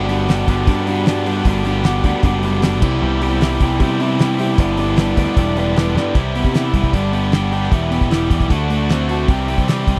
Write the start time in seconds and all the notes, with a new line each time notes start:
Already playing: G1 G4 D5 F#5 B5
0.08 G2 D3 G3 B3 D4 F#4 G4, open hi-hat
0.27 G2 D3 G3 B3 D4 F#4 G4, snare, open hi-hat
0.47 G1 G2 D3 G3 B3 D4 F#4 G4, kick, open hi-hat
0.67 G2 D3 G3 B3 D4 F#4 G4, kick, open hi-hat
0.87 G2 D3 G3 B3 D4 F#4 G4, open hi-hat
1.06 G2 D3 G3 B3 D4 F#4 G4, snare, open hi-hat
1.26 G2 D3 G3 B3 D4 F#4 G4, open hi-hat
1.45 G1 G2 D3 G3 B3 D4 F#4 G4, kick, open hi-hat
1.64 G2 D3 G3 B3 D4 F#4 G4, open hi-hat
1.84 G2 D3 G3 B3 D4 F#4 G4, snare, open hi-hat
2.04 D2 G2 D3 G3 B3 D4 F#4 G4, kick, open hi-hat
2.23 F#1 G2 D3 G3 B3 D4 F#4 G4, kick, open hi-hat
2.43 G2 D3 G3 B3 D4 F#4 G4, open hi-hat
2.62 G2 D3 G3 B3 D4 F#4 G4, snare, open hi-hat
2.73 snare
2.82 C2 C3 E3 G3 B3 E4 G4 C5 E5, kick, crash
3.02 C2 C3 E3 G3 B3 E4 G4
3.21 C3 E3 G3 B3 E4 G4, open hi-hat
3.41 C3 E3 G3 B3 E4 G4, snare, open hi-hat
3.60 C2 C3 E3 G3 B3 E4 G4, kick, open hi-hat
3.80 C3 E3 G3 B3 E4 G4, kick, open hi-hat
4.00 C3 E3 G3 B3 E4 G4, open hi-hat
4.19 C3 E3 G3 B3 E4 G4, snare, open hi-hat
4.39 C3 E3 G3 B3 E4 G4, open hi-hat
4.58 G1 G2 D3 G3 B3 D4 E4 G4 B4 D5 B5, kick, open hi-hat
4.77 G2 D3 G3 B3 D4 E4 G4 B4 D5, open hi-hat
4.97 G2 D3 G3 B3 D4 E4 G4 B4 D5, snare, open hi-hat
5.17 D2 G2 D3 G3 B3 D4 E4 G4 B4 D5, kick, open hi-hat
5.36 E1 G2 D3 G3 B3 D4 E4 G4 B4 D5, kick, open hi-hat
5.57 G2 D3 G3 B3 D4 E4 G4 B4 D5, open hi-hat
5.76 G2 D3 G3 B3 D4 E4 G4 B4 D5, snare, open hi-hat
5.95 G2 D3 G3 B3 D4 E4 G4 B4 D5, snare
6.14 C2 C3 E3 G3 E4 G4 B4 E5 B5, kick, open hi-hat
6.35 G3 B3 E4 G4, open hi-hat
6.44 C3, kick
6.54 E3 G3 E4 G4, snare, open hi-hat
6.73 C2 G3, kick, open hi-hat
6.83 C2, kick
6.93 G1 G2 D3 G3 B3 D4 G4 B4 D5, kick, open hi-hat
7.13 G3 B3 D4 G4, open hi-hat
7.32 G3 B3 D4 G4, snare, open hi-hat
7.52 G3 B3 D4 G4, open hi-hat
7.64 snare
7.72 E1 E2 B2 E3 G3 B3 G4 E5, kick, open hi-hat
7.92 E3 G3 B3 G4, open hi-hat
8.01 E1, kick
8.10 E3 G3 B3 E4 G4, snare, open hi-hat
8.30 E2 E3, kick, open hi-hat
8.40 B1, kick
8.50 D2 D3 A3 D4 F#4 C5 D5 A5, kick, open hi-hat
8.70 A3 D4 F#4, open hi-hat
8.89 D3 A3 C4 D4 F#4, snare, open hi-hat
9.09 A3 D4 F#4, open hi-hat
9.28 C2 C3 E3 G3 C4 G4 E5 B5, kick, open hi-hat
9.48 G3 C4 G4, open hi-hat
9.58 C3, kick
9.67 E3 G3 C4 G4, snare, open hi-hat
9.87 C2 C3, kick, open hi-hat